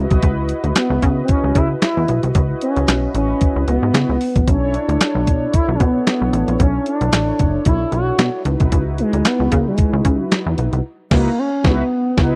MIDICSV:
0, 0, Header, 1, 5, 480
1, 0, Start_track
1, 0, Tempo, 530973
1, 205, Time_signature, 4, 2, 24, 8
1, 11168, End_track
2, 0, Start_track
2, 0, Title_t, "Analog polysynth"
2, 0, Program_c, 0, 90
2, 0, Note_on_c, 0, 64, 72
2, 0, Note_on_c, 0, 66, 73
2, 0, Note_on_c, 0, 75, 78
2, 28, Note_on_c, 0, 71, 91
2, 3764, Note_off_c, 0, 75, 0
2, 3767, Note_off_c, 0, 64, 0
2, 3769, Note_off_c, 0, 66, 0
2, 3800, Note_off_c, 0, 71, 0
2, 4038, Note_on_c, 0, 61, 54
2, 4042, Note_on_c, 0, 64, 63
2, 4047, Note_on_c, 0, 69, 66
2, 4053, Note_on_c, 0, 73, 81
2, 4094, Note_on_c, 0, 62, 69
2, 4106, Note_off_c, 0, 61, 0
2, 7607, Note_off_c, 0, 64, 0
2, 7610, Note_off_c, 0, 69, 0
2, 7613, Note_off_c, 0, 73, 0
2, 7633, Note_off_c, 0, 62, 0
2, 7636, Note_on_c, 0, 63, 69
2, 7640, Note_on_c, 0, 64, 63
2, 7645, Note_on_c, 0, 66, 62
2, 7650, Note_on_c, 0, 71, 72
2, 9765, Note_off_c, 0, 63, 0
2, 9766, Note_off_c, 0, 64, 0
2, 9769, Note_off_c, 0, 66, 0
2, 9771, Note_off_c, 0, 71, 0
2, 10036, Note_on_c, 0, 63, 100
2, 10042, Note_on_c, 0, 64, 97
2, 10047, Note_on_c, 0, 66, 98
2, 10052, Note_on_c, 0, 71, 108
2, 10208, Note_off_c, 0, 63, 0
2, 10212, Note_off_c, 0, 64, 0
2, 10214, Note_off_c, 0, 66, 0
2, 10217, Note_off_c, 0, 71, 0
2, 10514, Note_on_c, 0, 63, 100
2, 10520, Note_on_c, 0, 64, 103
2, 10526, Note_on_c, 0, 66, 106
2, 10530, Note_on_c, 0, 71, 107
2, 10687, Note_off_c, 0, 63, 0
2, 10690, Note_off_c, 0, 64, 0
2, 10693, Note_off_c, 0, 66, 0
2, 10696, Note_off_c, 0, 71, 0
2, 10996, Note_on_c, 0, 63, 105
2, 11000, Note_on_c, 0, 64, 99
2, 11004, Note_on_c, 0, 66, 101
2, 11011, Note_on_c, 0, 71, 100
2, 11168, Note_off_c, 0, 63, 0
2, 11168, Note_off_c, 0, 64, 0
2, 11168, Note_off_c, 0, 66, 0
2, 11168, Note_off_c, 0, 71, 0
2, 11168, End_track
3, 0, Start_track
3, 0, Title_t, "Analog synth lead"
3, 0, Program_c, 1, 81
3, 695, Note_on_c, 1, 59, 85
3, 1088, Note_off_c, 1, 59, 0
3, 1121, Note_on_c, 1, 60, 72
3, 1179, Note_on_c, 1, 61, 104
3, 1192, Note_off_c, 1, 60, 0
3, 1412, Note_off_c, 1, 61, 0
3, 1416, Note_on_c, 1, 64, 96
3, 1521, Note_off_c, 1, 64, 0
3, 1653, Note_on_c, 1, 64, 98
3, 1997, Note_off_c, 1, 64, 0
3, 2370, Note_on_c, 1, 61, 97
3, 2814, Note_off_c, 1, 61, 0
3, 2851, Note_on_c, 1, 61, 98
3, 3295, Note_off_c, 1, 61, 0
3, 3333, Note_on_c, 1, 59, 95
3, 4051, Note_on_c, 1, 61, 92
3, 4064, Note_off_c, 1, 59, 0
3, 4290, Note_on_c, 1, 62, 109
3, 4304, Note_off_c, 1, 61, 0
3, 5006, Note_off_c, 1, 62, 0
3, 5011, Note_on_c, 1, 64, 106
3, 5180, Note_off_c, 1, 64, 0
3, 5198, Note_on_c, 1, 61, 68
3, 5254, Note_on_c, 1, 59, 96
3, 5268, Note_off_c, 1, 61, 0
3, 5969, Note_off_c, 1, 59, 0
3, 5975, Note_on_c, 1, 61, 92
3, 6194, Note_off_c, 1, 61, 0
3, 6220, Note_on_c, 1, 62, 110
3, 6896, Note_off_c, 1, 62, 0
3, 6937, Note_on_c, 1, 64, 115
3, 7155, Note_off_c, 1, 64, 0
3, 7174, Note_on_c, 1, 66, 100
3, 7616, Note_off_c, 1, 66, 0
3, 8131, Note_on_c, 1, 56, 99
3, 8371, Note_on_c, 1, 59, 112
3, 8384, Note_off_c, 1, 56, 0
3, 8613, Note_on_c, 1, 58, 99
3, 8626, Note_off_c, 1, 59, 0
3, 8743, Note_off_c, 1, 58, 0
3, 8748, Note_on_c, 1, 56, 88
3, 9245, Note_off_c, 1, 56, 0
3, 9245, Note_on_c, 1, 54, 88
3, 9427, Note_off_c, 1, 54, 0
3, 10052, Note_on_c, 1, 58, 96
3, 10293, Note_on_c, 1, 61, 112
3, 10307, Note_off_c, 1, 58, 0
3, 10532, Note_on_c, 1, 59, 103
3, 10546, Note_off_c, 1, 61, 0
3, 11168, Note_off_c, 1, 59, 0
3, 11168, End_track
4, 0, Start_track
4, 0, Title_t, "Analog synth bass"
4, 0, Program_c, 2, 38
4, 99, Note_on_c, 2, 36, 83
4, 177, Note_off_c, 2, 36, 0
4, 204, Note_on_c, 2, 37, 102
4, 481, Note_off_c, 2, 37, 0
4, 576, Note_on_c, 2, 38, 81
4, 655, Note_off_c, 2, 38, 0
4, 814, Note_on_c, 2, 37, 91
4, 894, Note_off_c, 2, 37, 0
4, 925, Note_on_c, 2, 49, 109
4, 1102, Note_off_c, 2, 49, 0
4, 1299, Note_on_c, 2, 37, 91
4, 1377, Note_off_c, 2, 37, 0
4, 1405, Note_on_c, 2, 49, 105
4, 1582, Note_off_c, 2, 49, 0
4, 1781, Note_on_c, 2, 40, 95
4, 1858, Note_off_c, 2, 40, 0
4, 1887, Note_on_c, 2, 35, 96
4, 1985, Note_off_c, 2, 35, 0
4, 2019, Note_on_c, 2, 36, 88
4, 2097, Note_off_c, 2, 36, 0
4, 2125, Note_on_c, 2, 37, 104
4, 2302, Note_off_c, 2, 37, 0
4, 2500, Note_on_c, 2, 37, 100
4, 2578, Note_off_c, 2, 37, 0
4, 2604, Note_on_c, 2, 35, 98
4, 2782, Note_off_c, 2, 35, 0
4, 2843, Note_on_c, 2, 33, 99
4, 3021, Note_off_c, 2, 33, 0
4, 3219, Note_on_c, 2, 37, 88
4, 3297, Note_off_c, 2, 37, 0
4, 3325, Note_on_c, 2, 37, 91
4, 3424, Note_off_c, 2, 37, 0
4, 3458, Note_on_c, 2, 44, 87
4, 3537, Note_off_c, 2, 44, 0
4, 3560, Note_on_c, 2, 49, 96
4, 3661, Note_off_c, 2, 49, 0
4, 3698, Note_on_c, 2, 37, 91
4, 3777, Note_off_c, 2, 37, 0
4, 3940, Note_on_c, 2, 34, 78
4, 4018, Note_off_c, 2, 34, 0
4, 4045, Note_on_c, 2, 35, 100
4, 4322, Note_off_c, 2, 35, 0
4, 4416, Note_on_c, 2, 38, 97
4, 4495, Note_off_c, 2, 38, 0
4, 4656, Note_on_c, 2, 35, 97
4, 4766, Note_on_c, 2, 47, 101
4, 4780, Note_off_c, 2, 35, 0
4, 4943, Note_off_c, 2, 47, 0
4, 5137, Note_on_c, 2, 35, 97
4, 5216, Note_off_c, 2, 35, 0
4, 5244, Note_on_c, 2, 47, 92
4, 5422, Note_off_c, 2, 47, 0
4, 5617, Note_on_c, 2, 35, 90
4, 5696, Note_off_c, 2, 35, 0
4, 5722, Note_on_c, 2, 33, 94
4, 5823, Note_off_c, 2, 33, 0
4, 5858, Note_on_c, 2, 34, 95
4, 5936, Note_off_c, 2, 34, 0
4, 5964, Note_on_c, 2, 35, 109
4, 6141, Note_off_c, 2, 35, 0
4, 6337, Note_on_c, 2, 35, 95
4, 6416, Note_off_c, 2, 35, 0
4, 6443, Note_on_c, 2, 33, 92
4, 6621, Note_off_c, 2, 33, 0
4, 6685, Note_on_c, 2, 30, 98
4, 6863, Note_off_c, 2, 30, 0
4, 6926, Note_on_c, 2, 35, 101
4, 7103, Note_off_c, 2, 35, 0
4, 7161, Note_on_c, 2, 35, 93
4, 7339, Note_off_c, 2, 35, 0
4, 7399, Note_on_c, 2, 47, 101
4, 7500, Note_off_c, 2, 47, 0
4, 7641, Note_on_c, 2, 37, 107
4, 7742, Note_off_c, 2, 37, 0
4, 7778, Note_on_c, 2, 36, 88
4, 7856, Note_off_c, 2, 36, 0
4, 7883, Note_on_c, 2, 37, 104
4, 8161, Note_off_c, 2, 37, 0
4, 8256, Note_on_c, 2, 38, 86
4, 8335, Note_off_c, 2, 38, 0
4, 8495, Note_on_c, 2, 37, 91
4, 8575, Note_off_c, 2, 37, 0
4, 8604, Note_on_c, 2, 49, 110
4, 8782, Note_off_c, 2, 49, 0
4, 8978, Note_on_c, 2, 37, 99
4, 9056, Note_off_c, 2, 37, 0
4, 9083, Note_on_c, 2, 49, 94
4, 9261, Note_off_c, 2, 49, 0
4, 9458, Note_on_c, 2, 40, 91
4, 9536, Note_off_c, 2, 40, 0
4, 9566, Note_on_c, 2, 35, 86
4, 9665, Note_off_c, 2, 35, 0
4, 9699, Note_on_c, 2, 36, 86
4, 9777, Note_off_c, 2, 36, 0
4, 10045, Note_on_c, 2, 37, 105
4, 10213, Note_off_c, 2, 37, 0
4, 10526, Note_on_c, 2, 37, 109
4, 10694, Note_off_c, 2, 37, 0
4, 11006, Note_on_c, 2, 37, 100
4, 11168, Note_off_c, 2, 37, 0
4, 11168, End_track
5, 0, Start_track
5, 0, Title_t, "Drums"
5, 95, Note_on_c, 9, 42, 52
5, 99, Note_on_c, 9, 36, 101
5, 185, Note_off_c, 9, 42, 0
5, 190, Note_off_c, 9, 36, 0
5, 203, Note_on_c, 9, 42, 74
5, 204, Note_on_c, 9, 36, 116
5, 293, Note_off_c, 9, 42, 0
5, 295, Note_off_c, 9, 36, 0
5, 441, Note_on_c, 9, 42, 69
5, 532, Note_off_c, 9, 42, 0
5, 577, Note_on_c, 9, 42, 49
5, 667, Note_off_c, 9, 42, 0
5, 682, Note_on_c, 9, 42, 91
5, 685, Note_on_c, 9, 38, 110
5, 691, Note_on_c, 9, 39, 93
5, 772, Note_off_c, 9, 42, 0
5, 775, Note_off_c, 9, 38, 0
5, 781, Note_off_c, 9, 39, 0
5, 925, Note_on_c, 9, 42, 71
5, 926, Note_on_c, 9, 36, 91
5, 1016, Note_off_c, 9, 36, 0
5, 1016, Note_off_c, 9, 42, 0
5, 1159, Note_on_c, 9, 42, 78
5, 1167, Note_on_c, 9, 36, 107
5, 1250, Note_off_c, 9, 42, 0
5, 1257, Note_off_c, 9, 36, 0
5, 1403, Note_on_c, 9, 42, 71
5, 1404, Note_on_c, 9, 36, 87
5, 1493, Note_off_c, 9, 42, 0
5, 1495, Note_off_c, 9, 36, 0
5, 1643, Note_on_c, 9, 42, 71
5, 1647, Note_on_c, 9, 38, 108
5, 1652, Note_on_c, 9, 39, 83
5, 1734, Note_off_c, 9, 42, 0
5, 1737, Note_off_c, 9, 38, 0
5, 1743, Note_off_c, 9, 39, 0
5, 1883, Note_on_c, 9, 42, 67
5, 1974, Note_off_c, 9, 42, 0
5, 2017, Note_on_c, 9, 42, 52
5, 2107, Note_off_c, 9, 42, 0
5, 2123, Note_on_c, 9, 42, 78
5, 2125, Note_on_c, 9, 36, 113
5, 2213, Note_off_c, 9, 42, 0
5, 2215, Note_off_c, 9, 36, 0
5, 2363, Note_on_c, 9, 42, 74
5, 2454, Note_off_c, 9, 42, 0
5, 2499, Note_on_c, 9, 42, 51
5, 2590, Note_off_c, 9, 42, 0
5, 2603, Note_on_c, 9, 42, 94
5, 2606, Note_on_c, 9, 38, 108
5, 2612, Note_on_c, 9, 39, 93
5, 2694, Note_off_c, 9, 42, 0
5, 2697, Note_off_c, 9, 38, 0
5, 2703, Note_off_c, 9, 39, 0
5, 2844, Note_on_c, 9, 42, 77
5, 2934, Note_off_c, 9, 42, 0
5, 3081, Note_on_c, 9, 42, 80
5, 3087, Note_on_c, 9, 36, 108
5, 3171, Note_off_c, 9, 42, 0
5, 3177, Note_off_c, 9, 36, 0
5, 3324, Note_on_c, 9, 42, 67
5, 3414, Note_off_c, 9, 42, 0
5, 3564, Note_on_c, 9, 42, 77
5, 3568, Note_on_c, 9, 38, 102
5, 3573, Note_on_c, 9, 39, 85
5, 3655, Note_off_c, 9, 42, 0
5, 3658, Note_off_c, 9, 38, 0
5, 3664, Note_off_c, 9, 39, 0
5, 3804, Note_on_c, 9, 46, 71
5, 3895, Note_off_c, 9, 46, 0
5, 3937, Note_on_c, 9, 42, 53
5, 3940, Note_on_c, 9, 36, 97
5, 4028, Note_off_c, 9, 42, 0
5, 4030, Note_off_c, 9, 36, 0
5, 4046, Note_on_c, 9, 36, 110
5, 4046, Note_on_c, 9, 42, 78
5, 4136, Note_off_c, 9, 36, 0
5, 4136, Note_off_c, 9, 42, 0
5, 4285, Note_on_c, 9, 42, 70
5, 4376, Note_off_c, 9, 42, 0
5, 4421, Note_on_c, 9, 42, 49
5, 4511, Note_off_c, 9, 42, 0
5, 4525, Note_on_c, 9, 42, 100
5, 4529, Note_on_c, 9, 38, 110
5, 4534, Note_on_c, 9, 39, 93
5, 4616, Note_off_c, 9, 42, 0
5, 4619, Note_off_c, 9, 38, 0
5, 4625, Note_off_c, 9, 39, 0
5, 4767, Note_on_c, 9, 36, 93
5, 4767, Note_on_c, 9, 42, 71
5, 4857, Note_off_c, 9, 36, 0
5, 4857, Note_off_c, 9, 42, 0
5, 5003, Note_on_c, 9, 42, 83
5, 5007, Note_on_c, 9, 36, 109
5, 5094, Note_off_c, 9, 42, 0
5, 5098, Note_off_c, 9, 36, 0
5, 5244, Note_on_c, 9, 42, 70
5, 5245, Note_on_c, 9, 36, 91
5, 5334, Note_off_c, 9, 42, 0
5, 5335, Note_off_c, 9, 36, 0
5, 5485, Note_on_c, 9, 42, 69
5, 5488, Note_on_c, 9, 38, 103
5, 5494, Note_on_c, 9, 39, 82
5, 5575, Note_off_c, 9, 42, 0
5, 5579, Note_off_c, 9, 38, 0
5, 5584, Note_off_c, 9, 39, 0
5, 5725, Note_on_c, 9, 42, 69
5, 5816, Note_off_c, 9, 42, 0
5, 5858, Note_on_c, 9, 42, 54
5, 5949, Note_off_c, 9, 42, 0
5, 5964, Note_on_c, 9, 42, 71
5, 5965, Note_on_c, 9, 36, 120
5, 6055, Note_off_c, 9, 42, 0
5, 6056, Note_off_c, 9, 36, 0
5, 6202, Note_on_c, 9, 42, 69
5, 6292, Note_off_c, 9, 42, 0
5, 6337, Note_on_c, 9, 42, 52
5, 6427, Note_off_c, 9, 42, 0
5, 6441, Note_on_c, 9, 42, 92
5, 6444, Note_on_c, 9, 38, 111
5, 6450, Note_on_c, 9, 39, 88
5, 6532, Note_off_c, 9, 42, 0
5, 6535, Note_off_c, 9, 38, 0
5, 6541, Note_off_c, 9, 39, 0
5, 6683, Note_on_c, 9, 42, 75
5, 6685, Note_on_c, 9, 36, 92
5, 6773, Note_off_c, 9, 42, 0
5, 6775, Note_off_c, 9, 36, 0
5, 6918, Note_on_c, 9, 42, 82
5, 6926, Note_on_c, 9, 36, 105
5, 7008, Note_off_c, 9, 42, 0
5, 7016, Note_off_c, 9, 36, 0
5, 7161, Note_on_c, 9, 42, 66
5, 7252, Note_off_c, 9, 42, 0
5, 7400, Note_on_c, 9, 42, 71
5, 7403, Note_on_c, 9, 38, 107
5, 7409, Note_on_c, 9, 39, 86
5, 7490, Note_off_c, 9, 42, 0
5, 7493, Note_off_c, 9, 38, 0
5, 7499, Note_off_c, 9, 39, 0
5, 7641, Note_on_c, 9, 42, 72
5, 7731, Note_off_c, 9, 42, 0
5, 7774, Note_on_c, 9, 42, 52
5, 7778, Note_on_c, 9, 36, 99
5, 7864, Note_off_c, 9, 42, 0
5, 7868, Note_off_c, 9, 36, 0
5, 7882, Note_on_c, 9, 42, 78
5, 7884, Note_on_c, 9, 36, 113
5, 7973, Note_off_c, 9, 42, 0
5, 7974, Note_off_c, 9, 36, 0
5, 8121, Note_on_c, 9, 42, 69
5, 8211, Note_off_c, 9, 42, 0
5, 8255, Note_on_c, 9, 42, 52
5, 8346, Note_off_c, 9, 42, 0
5, 8360, Note_on_c, 9, 42, 94
5, 8363, Note_on_c, 9, 38, 103
5, 8369, Note_on_c, 9, 39, 88
5, 8451, Note_off_c, 9, 42, 0
5, 8454, Note_off_c, 9, 38, 0
5, 8459, Note_off_c, 9, 39, 0
5, 8603, Note_on_c, 9, 42, 73
5, 8604, Note_on_c, 9, 36, 90
5, 8693, Note_off_c, 9, 42, 0
5, 8695, Note_off_c, 9, 36, 0
5, 8839, Note_on_c, 9, 42, 82
5, 8846, Note_on_c, 9, 36, 114
5, 8929, Note_off_c, 9, 42, 0
5, 8936, Note_off_c, 9, 36, 0
5, 9083, Note_on_c, 9, 42, 74
5, 9084, Note_on_c, 9, 36, 86
5, 9173, Note_off_c, 9, 42, 0
5, 9174, Note_off_c, 9, 36, 0
5, 9325, Note_on_c, 9, 42, 68
5, 9328, Note_on_c, 9, 38, 104
5, 9334, Note_on_c, 9, 39, 84
5, 9415, Note_off_c, 9, 42, 0
5, 9419, Note_off_c, 9, 38, 0
5, 9424, Note_off_c, 9, 39, 0
5, 9563, Note_on_c, 9, 42, 72
5, 9654, Note_off_c, 9, 42, 0
5, 9698, Note_on_c, 9, 42, 52
5, 9788, Note_off_c, 9, 42, 0
5, 10044, Note_on_c, 9, 49, 78
5, 10045, Note_on_c, 9, 36, 106
5, 10046, Note_on_c, 9, 38, 99
5, 10135, Note_off_c, 9, 49, 0
5, 10136, Note_off_c, 9, 36, 0
5, 10137, Note_off_c, 9, 38, 0
5, 10526, Note_on_c, 9, 36, 101
5, 10529, Note_on_c, 9, 38, 106
5, 10616, Note_off_c, 9, 36, 0
5, 10619, Note_off_c, 9, 38, 0
5, 11006, Note_on_c, 9, 36, 106
5, 11008, Note_on_c, 9, 38, 103
5, 11097, Note_off_c, 9, 36, 0
5, 11098, Note_off_c, 9, 38, 0
5, 11168, End_track
0, 0, End_of_file